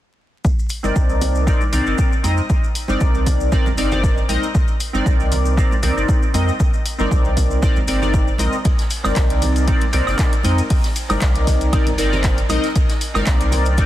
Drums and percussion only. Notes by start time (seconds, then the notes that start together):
0.45 kick, maracas
0.59 maracas
0.69 open hi-hat, maracas
0.84 high conga, maracas
0.96 kick, maracas
1.10 maracas
1.22 open hi-hat, low conga, maracas
1.35 maracas
1.47 kick, maracas
1.61 high conga, maracas
1.73 open hi-hat, low conga, maracas
1.86 maracas
1.98 kick, maracas
2.13 maracas
2.24 open hi-hat, high conga, maracas
2.37 maracas
2.50 kick, maracas
2.64 maracas
2.75 open hi-hat, maracas
2.88 high conga, maracas
3.01 kick, maracas
3.15 maracas
3.26 kick, open hi-hat, low conga, maracas
3.40 maracas
3.52 kick, maracas
3.66 high conga, low conga, maracas
3.78 open hi-hat, maracas
3.92 low conga, maracas
4.04 kick, maracas
4.18 maracas
4.29 open hi-hat, high conga, maracas
4.43 maracas
4.55 kick, maracas
4.68 maracas
4.80 open hi-hat, maracas
4.95 high conga, maracas
5.06 kick, maracas
5.20 maracas
5.32 open hi-hat, low conga, maracas
5.45 maracas
5.57 kick, maracas
5.71 high conga, maracas
5.83 open hi-hat, low conga, maracas
5.98 maracas
6.09 kick, maracas
6.23 maracas
6.34 open hi-hat, high conga, maracas
6.48 maracas
6.60 kick, maracas
6.74 maracas
6.86 open hi-hat, maracas
6.99 high conga, maracas
7.11 kick, maracas
7.25 maracas
7.37 kick, open hi-hat, low conga, maracas
7.51 maracas
7.62 kick, maracas
7.76 high conga, low conga, maracas
7.88 open hi-hat, maracas
8.02 low conga, maracas
8.14 kick, maracas
8.28 maracas
8.38 open hi-hat, high conga, maracas
8.53 maracas
8.65 kick, closed hi-hat, ride, maracas
8.79 snare, closed hi-hat, maracas
8.90 open hi-hat, ride, maracas
9.04 snare, high conga, high woodblock, maracas
9.16 kick, snare, clap, closed hi-hat, ride, maracas
9.30 closed hi-hat, maracas
9.42 open hi-hat, ride, low conga, maracas
9.56 closed hi-hat, maracas
9.68 kick, closed hi-hat, ride, maracas
9.81 closed hi-hat, ride, high conga, maracas
9.93 open hi-hat, ride, low conga, maracas
10.07 snare, high woodblock, maracas
10.19 kick, snare, clap, closed hi-hat, ride, maracas
10.33 closed hi-hat, maracas
10.43 open hi-hat, ride, high conga, maracas
10.58 closed hi-hat, ride, maracas
10.70 kick, closed hi-hat, open hi-hat, maracas
10.84 snare, closed hi-hat, maracas
10.96 open hi-hat, ride, maracas
11.09 snare, closed hi-hat, high conga, high woodblock, maracas
11.21 kick, snare, clap, closed hi-hat, ride, maracas
11.35 closed hi-hat, maracas
11.47 kick, snare, open hi-hat, ride, low conga, maracas
11.61 closed hi-hat, maracas
11.73 kick, closed hi-hat, ride, high woodblock, maracas
11.87 closed hi-hat, high conga, low conga, maracas
11.98 open hi-hat, ride, maracas
12.12 snare, low conga, maracas
12.24 kick, snare, clap, closed hi-hat, ride, maracas
12.38 closed hi-hat, ride, maracas
12.49 open hi-hat, ride, high conga, high woodblock, maracas
12.63 snare, closed hi-hat, maracas
12.75 kick, closed hi-hat, ride, maracas
12.89 snare, closed hi-hat, maracas
13.01 open hi-hat, ride, maracas
13.15 snare, high conga, high woodblock, maracas
13.26 kick, snare, clap, closed hi-hat, ride, maracas
13.41 closed hi-hat, maracas
13.52 open hi-hat, ride, low conga, maracas
13.65 closed hi-hat, maracas
13.78 kick, closed hi-hat, ride, maracas